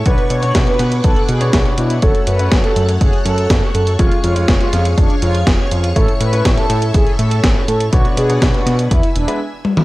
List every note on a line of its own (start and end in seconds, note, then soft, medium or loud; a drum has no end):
0.00 1.99 C#6 loud
0.06 0.17 B1 loud
0.06 0.40 B2 medium
0.06 0.40 B3 medium
0.06 2.00 D4 medium
0.06 0.40 D4 medium
0.06 0.40 F#4 medium
0.06 2.00 B4 medium
0.06 0.24 B4 loud
0.06 0.40 C#5 medium
0.06 2.00 F#5 medium
0.06 kick loud
0.06 closed hi-hat medium
0.18 closed hi-hat soft
0.30 0.52 B2 medium
0.30 0.57 C#5 medium
0.30 closed hi-hat medium
0.43 1.39 B2 medium
0.43 1.38 B3 medium
0.43 1.39 D4 medium
0.43 1.39 F#4 medium
0.43 1.39 C#5 medium
0.43 closed hi-hat soft
0.55 0.66 B1 loud
0.55 kick loud
0.55 snare loud
0.55 closed hi-hat medium
0.67 0.94 B4 loud
0.67 closed hi-hat soft
0.79 1.01 B2 loud
0.79 snare soft
0.79 closed hi-hat medium
0.92 closed hi-hat soft
1.04 1.15 B1 medium
1.04 1.22 A4 medium
1.04 kick loud
1.04 closed hi-hat medium
1.16 closed hi-hat soft
1.29 1.51 B2 medium
1.29 1.65 G#4 medium
1.29 closed hi-hat medium
1.41 1.50 B2 medium
1.41 1.50 B3 medium
1.41 1.50 D4 medium
1.41 1.50 F#4 medium
1.41 1.50 C#5 loud
1.41 closed hi-hat soft
1.53 1.64 B1 loud
1.53 1.99 B2 medium
1.53 2.00 B3 medium
1.53 2.00 D4 medium
1.53 2.00 F#4 medium
1.53 2.00 C#5 medium
1.53 kick loud
1.53 snare loud
1.53 closed hi-hat medium
1.66 closed hi-hat soft
1.78 2.00 B2 medium
1.78 1.96 E4 medium
1.78 closed hi-hat medium
1.90 closed hi-hat medium
2.02 2.13 F#1 loud
2.02 2.36 A3 medium
2.02 2.36 C#4 medium
2.02 2.36 F#4 medium
2.02 3.97 A4 medium
2.02 2.20 A4 loud
2.02 3.97 C#5 medium
2.02 2.36 C#5 loud
2.02 3.97 F#5 medium
2.02 8.87 C#6 medium
2.02 kick loud
2.02 closed hi-hat medium
2.15 closed hi-hat soft
2.27 2.49 F#2 medium
2.27 2.54 B4 loud
2.27 closed hi-hat medium
2.39 3.96 A3 medium
2.39 3.96 C#4 medium
2.39 3.96 F#4 medium
2.39 3.96 C#5 medium
2.39 closed hi-hat soft
2.52 2.63 F#1 loud
2.52 kick loud
2.52 snare loud
2.52 closed hi-hat medium
2.64 2.91 A4 loud
2.64 closed hi-hat soft
2.76 2.98 F#2 loud
2.76 closed hi-hat medium
2.89 closed hi-hat soft
3.01 3.12 F#1 medium
3.01 3.19 G#4 medium
3.01 kick loud
3.01 closed hi-hat medium
3.13 closed hi-hat soft
3.25 3.47 F#2 loud
3.25 3.61 A4 loud
3.25 closed hi-hat medium
3.38 closed hi-hat soft
3.50 3.61 F#1 loud
3.50 kick loud
3.50 snare loud
3.50 closed hi-hat medium
3.74 3.96 F#2 medium
3.74 3.92 A4 medium
3.74 closed hi-hat medium
3.87 closed hi-hat medium
3.99 4.10 F1 loud
3.99 4.33 G#3 medium
3.99 4.33 C#4 medium
3.99 4.17 F4 medium
3.99 4.33 F4 medium
3.99 5.94 G#4 medium
3.99 7.89 C#5 medium
3.99 4.33 C#5 medium
3.99 5.94 F5 medium
3.99 kick loud
3.99 closed hi-hat medium
4.12 closed hi-hat soft
4.24 4.46 F2 medium
4.24 4.51 F4 loud
4.24 closed hi-hat medium
4.36 5.93 G#3 medium
4.36 5.93 C#4 medium
4.36 5.93 F4 medium
4.36 5.93 C#5 medium
4.36 closed hi-hat medium
4.48 4.59 F1 loud
4.48 kick loud
4.48 snare loud
4.48 closed hi-hat medium
4.61 4.88 F4 loud
4.61 closed hi-hat soft
4.73 4.95 F2 loud
4.73 snare soft
4.73 closed hi-hat medium
4.85 closed hi-hat medium
4.97 5.09 F1 medium
4.97 5.15 D4 medium
4.97 kick loud
4.97 closed hi-hat medium
5.10 closed hi-hat soft
5.22 5.44 F2 loud
5.22 5.58 F4 loud
5.22 closed hi-hat medium
5.35 closed hi-hat soft
5.47 5.58 F1 loud
5.47 kick loud
5.47 snare loud
5.47 closed hi-hat medium
5.71 5.93 F2 medium
5.71 5.89 F4 medium
5.71 closed hi-hat medium
5.84 closed hi-hat medium
5.96 6.07 A1 loud
5.96 6.30 A2 medium
5.96 6.30 A3 medium
5.96 6.30 C#4 medium
5.96 6.30 E4 medium
5.96 6.14 A4 loud
5.96 7.91 A4 medium
5.96 6.30 C#5 loud
5.96 7.91 E5 medium
5.96 kick loud
5.96 closed hi-hat medium
6.08 closed hi-hat soft
6.20 6.42 A2 medium
6.20 6.47 B4 loud
6.20 closed hi-hat medium
6.33 7.90 A2 medium
6.33 7.90 A3 medium
6.33 7.90 C#4 medium
6.33 7.90 E4 medium
6.33 7.90 C#5 medium
6.33 closed hi-hat medium
6.45 6.56 A1 loud
6.45 kick loud
6.45 snare loud
6.45 closed hi-hat medium
6.57 6.84 A4 loud
6.57 closed hi-hat soft
6.70 6.92 A2 loud
6.70 closed hi-hat medium
6.82 closed hi-hat medium
6.94 7.05 A1 medium
6.94 7.12 G#4 medium
6.94 kick loud
6.94 closed hi-hat medium
7.07 closed hi-hat soft
7.19 7.41 A2 loud
7.19 7.55 A4 loud
7.19 closed hi-hat medium
7.31 closed hi-hat medium
7.44 7.54 A1 loud
7.44 kick loud
7.44 snare loud
7.44 closed hi-hat medium
7.68 7.90 A2 medium
7.68 7.86 A4 medium
7.68 closed hi-hat medium
7.80 closed hi-hat medium
7.92 8.04 B1 loud
7.92 8.27 B2 medium
7.92 8.27 B3 medium
7.92 8.27 D4 medium
7.92 8.90 D4 medium
7.92 8.27 F#4 medium
7.92 8.11 F#4 loud
7.92 9.39 B4 medium
7.92 8.27 C#5 medium
7.92 8.90 F#5 medium
7.92 kick loud
7.92 closed hi-hat medium
8.05 closed hi-hat soft
8.17 8.39 B2 medium
8.17 8.44 G#4 loud
8.17 closed hi-hat medium
8.29 8.89 B2 medium
8.29 8.89 B3 medium
8.29 8.89 D4 medium
8.29 8.89 F#4 medium
8.29 8.89 C#5 medium
8.29 closed hi-hat medium
8.42 8.53 B1 loud
8.42 kick loud
8.42 snare loud
8.42 closed hi-hat medium
8.54 8.81 F#4 loud
8.54 closed hi-hat soft
8.66 8.88 B2 loud
8.66 snare soft
8.66 closed hi-hat medium
8.79 closed hi-hat medium
8.91 9.02 E2 loud
8.91 9.09 E4 medium
8.91 9.40 E5 medium
8.91 9.40 G#5 medium
8.91 9.40 E6 medium
8.91 kick loud
8.91 closed hi-hat medium
9.03 closed hi-hat soft
9.16 9.27 E1 medium
9.16 9.40 D4 medium
9.16 closed hi-hat medium
9.28 9.37 G#3 loud
9.28 9.37 B3 medium
9.28 9.37 E4 medium
9.28 9.37 B4 loud
9.28 closed hi-hat medium
9.65 high tom medium
9.77 mid tom medium